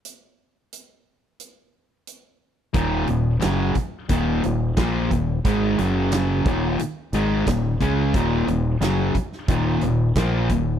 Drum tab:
HH |x---x---x---x---|x-x-x-x-x-x-x-x-|x-x-x-x-x-x-x-x-|x-x-x-x-x-x-x-x-|
SD |----------------|----o-------o---|----o-------o---|----o--o----o---|
BD |----------------|o-----o-o---o-o-|o-----o-----o-o-|o-----o-o---o-o-|